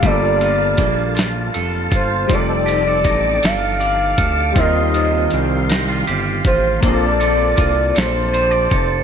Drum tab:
HH |xxxxxx|xxxxxx|xxxxxx|xxxxxx|
SD |---o--|---o--|---o--|---o--|
BD |o-o--o|o-o--o|o----o|o-o--o|